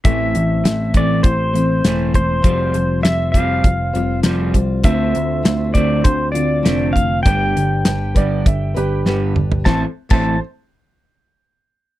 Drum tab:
CC |----------------|----------------|----------------|----------------|
HH |x-x-x-x-x-x-x-x-|x-x-x-x-x-x-x-x-|x-x-x-x-x-x-x-x-|x-x-x-x-x-x-----|
SD |----o-------o---|----o-------o---|----o-------o---|----o-------o---|
T2 |----------------|----------------|----------------|--------------o-|
FT |----------------|----------------|----------------|---------------o|
BD |o-----o-o-----o-|o-----o-o-----o-|o-----o-o-----o-|o-----o-o-------|

CC |---x------------|
HH |----------------|
SD |o---------------|
T2 |----------------|
FT |----------------|
BD |o--o------------|